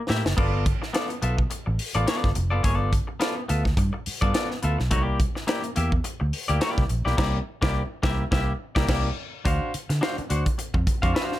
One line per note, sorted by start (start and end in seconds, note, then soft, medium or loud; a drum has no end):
0.08 0.22 A2 medium
0.08 0.26 A#3 medium
0.08 0.25 E4 medium
0.08 0.24 G4 medium
0.08 0.24 E5 medium
0.08 snare medium
0.24 0.35 F#1 medium
0.24 muted clean electric guitar stroke medium
0.24 snare medium
0.37 0.72 G1 loud
0.37 0.64 B3 medium
0.37 0.64 F4 medium
0.37 0.64 A4 medium
0.37 0.65 D5 medium
0.37 kick loud
0.37 crash medium
0.66 kick loud
0.66 closed hi-hat medium
0.82 muted clean electric guitar stroke medium
0.82 snare soft
0.93 1.15 B3 medium
0.93 1.10 F4 medium
0.93 1.09 A4 medium
0.93 1.08 D5 medium
0.93 snare loud
0.93 closed hi-hat loud
1.09 muted clean electric guitar stroke soft
1.09 closed hi-hat medium
1.22 1.44 B1 medium
1.22 1.39 B3 medium
1.22 1.38 F4 medium
1.22 1.38 A4 medium
1.22 1.37 E5 medium
1.22 closed hi-hat medium
1.38 muted clean electric guitar stroke soft
1.38 kick medium
1.50 muted clean electric guitar stroke soft
1.50 closed hi-hat medium
1.66 1.77 A1 medium
1.66 muted clean electric guitar stroke soft
1.79 open hi-hat medium
1.94 2.05 A1 medium
1.94 2.05 B3 medium
1.94 2.06 F4 medium
1.94 2.07 A4 medium
1.94 2.07 D5 medium
1.94 closed hi-hat soft
2.07 2.28 B3 medium
2.07 2.29 F4 medium
2.07 2.29 A4 medium
2.07 2.29 D5 medium
2.07 snare loud
2.07 closed hi-hat loud
2.24 2.34 G1 medium
2.24 kick medium
2.24 snare soft
2.35 2.52 F1 loud
2.35 muted clean electric guitar stroke soft
2.35 closed hi-hat medium
2.50 2.62 F#1 medium
2.50 2.62 B3 medium
2.50 2.62 F4 medium
2.50 2.63 A4 medium
2.50 2.64 D5 medium
2.63 2.98 G1 loud
2.63 2.74 A#3 medium
2.63 2.75 E4 medium
2.63 2.75 G#4 loud
2.63 2.76 C#5 loud
2.63 kick loud
2.63 closed hi-hat loud
2.74 2.90 B3 medium
2.74 2.90 F4 medium
2.74 2.91 A4 loud
2.74 2.91 D5 loud
2.93 kick medium
2.93 closed hi-hat medium
3.07 muted clean electric guitar stroke soft
3.20 3.41 B3 medium
3.20 3.36 F4 medium
3.20 3.36 A4 medium
3.20 3.35 D5 medium
3.20 snare loud
3.20 closed hi-hat loud
3.36 muted clean electric guitar stroke medium
3.48 3.71 D2 medium
3.48 3.66 B3 medium
3.48 3.65 F4 medium
3.48 3.64 A4 medium
3.48 3.64 E5 medium
3.48 closed hi-hat medium
3.65 muted clean electric guitar stroke soft
3.65 kick medium
3.65 snare soft
3.77 3.90 G2 loud
3.77 muted clean electric guitar stroke medium
3.77 kick loud
3.77 closed hi-hat medium
3.93 muted clean electric guitar stroke soft
4.06 muted fingered electric bass stroke soft
4.06 open hi-hat medium
4.21 4.32 G2 medium
4.21 4.32 B3 medium
4.21 4.33 F4 medium
4.21 4.34 A4 medium
4.21 4.34 D5 medium
4.21 kick loud
4.21 closed hi-hat soft
4.34 4.55 B3 medium
4.34 4.50 F4 medium
4.34 4.50 A4 medium
4.34 4.49 D5 medium
4.34 snare loud
4.34 closed hi-hat loud
4.50 muted clean electric guitar stroke medium
4.50 snare soft
4.62 4.76 D2 medium
4.62 4.80 B3 medium
4.62 4.79 F4 medium
4.62 4.78 A4 medium
4.62 4.78 E5 medium
4.62 closed hi-hat medium
4.79 4.91 B1 medium
4.79 muted clean electric guitar stroke soft
4.79 snare soft
4.91 5.25 C2 loud
4.91 5.02 A3 medium
4.91 5.02 D#4 medium
4.91 5.03 F#4 medium
4.91 5.03 C#5 medium
4.91 kick loud
4.91 closed hi-hat loud
5.02 5.17 A#3 medium
5.02 5.18 E4 medium
5.02 5.18 G4 medium
5.02 5.18 D5 medium
5.20 kick medium
5.20 closed hi-hat medium
5.35 muted clean electric guitar stroke soft
5.35 snare soft
5.47 5.68 A#3 medium
5.47 5.63 E4 medium
5.47 5.63 G4 medium
5.47 5.62 D5 medium
5.47 snare loud
5.47 closed hi-hat loud
5.64 muted clean electric guitar stroke soft
5.64 closed hi-hat medium
5.76 5.99 E2 medium
5.76 5.93 A#3 medium
5.76 5.92 E4 medium
5.76 5.91 G4 medium
5.76 5.92 E5 medium
5.76 closed hi-hat medium
5.92 muted clean electric guitar stroke soft
5.92 kick medium
6.04 muted clean electric guitar stroke soft
6.04 closed hi-hat medium
6.20 6.31 D2 medium
6.20 muted clean electric guitar stroke soft
6.33 open hi-hat medium
6.48 6.59 D2 medium
6.48 6.59 A#3 medium
6.48 6.60 E4 medium
6.48 6.61 G4 medium
6.48 6.61 D5 medium
6.48 closed hi-hat soft
6.61 6.82 A#3 medium
6.61 6.82 E4 medium
6.61 6.83 G4 loud
6.61 6.83 D5 medium
6.61 snare loud
6.61 closed hi-hat loud
6.78 6.87 C2 medium
6.78 kick loud
6.78 snare soft
6.89 7.02 A#1 medium
6.89 muted clean electric guitar stroke soft
6.89 closed hi-hat medium
7.05 7.18 B1 medium
7.05 7.16 A#3 medium
7.05 7.17 E4 medium
7.05 7.18 G4 medium
7.05 7.18 D5 medium
7.05 snare soft
7.17 7.38 C2 loud
7.17 7.38 A#3 medium
7.17 7.38 E4 loud
7.17 7.38 G4 loud
7.17 7.39 D5 loud
7.17 kick loud
7.17 snare loud
7.17 crash medium
7.62 7.81 C2 loud
7.62 7.81 A#3 loud
7.62 7.81 E4 loud
7.62 7.81 G4 loud
7.62 7.82 D5 loud
7.62 kick loud
7.62 snare loud
8.03 8.24 C2 loud
8.03 8.23 A#3 medium
8.03 8.23 E4 medium
8.03 8.23 G4 loud
8.03 8.24 E5 loud
8.03 kick loud
8.03 snare loud
8.31 8.52 C2 loud
8.31 8.51 A#3 loud
8.31 8.52 E4 medium
8.31 8.52 G4 loud
8.31 8.52 E5 loud
8.31 kick loud
8.31 snare loud
8.75 8.87 C2 medium
8.75 8.87 A#3 loud
8.75 8.87 E4 loud
8.75 8.87 G4 loud
8.75 8.86 D5 loud
8.75 kick loud
8.75 snare loud
8.88 9.09 C2 loud
8.88 9.08 A#3 loud
8.88 9.08 E4 loud
8.88 9.09 G4 loud
8.88 9.09 D5 loud
8.88 kick loud
8.88 snare loud
8.88 crash medium
9.45 9.58 D2 loud
9.45 9.71 D4 medium
9.45 9.72 F#4 medium
9.45 9.72 C5 medium
9.45 9.72 F5 medium
9.45 kick loud
9.45 closed hi-hat loud
9.74 muted fingered electric bass stroke soft
9.74 closed hi-hat medium
9.89 9.99 D3 medium
9.89 muted clean electric guitar stroke soft
9.89 snare soft
9.89 closed hi-hat soft
10.01 10.22 D4 medium
10.01 10.18 F#4 medium
10.01 10.17 C5 medium
10.01 10.16 F5 medium
10.01 snare loud
10.18 muted clean electric guitar stroke soft
10.18 muted fingered electric bass stroke soft
10.18 closed hi-hat soft
10.30 10.43 D2 medium
10.30 10.47 D4 medium
10.30 10.46 F#4 medium
10.30 10.45 C5 medium
10.30 10.45 F#5 medium
10.30 closed hi-hat medium
10.46 muted clean electric guitar stroke soft
10.46 kick medium
10.46 closed hi-hat medium
10.58 muted clean electric guitar stroke soft
10.58 closed hi-hat medium
10.74 10.84 F2 medium
10.74 muted clean electric guitar stroke soft
10.74 kick medium
10.87 kick loud
10.87 closed hi-hat medium
11.02 11.13 F2 medium
11.02 11.13 D4 medium
11.02 11.13 F#4 medium
11.02 11.14 C5 medium
11.02 11.15 F5 medium
11.02 kick medium
11.02 closed hi-hat soft
11.14 11.36 D4 medium
11.14 11.36 F#4 medium
11.14 11.37 C5 medium
11.14 11.37 F5 medium
11.14 snare loud
11.32 snare soft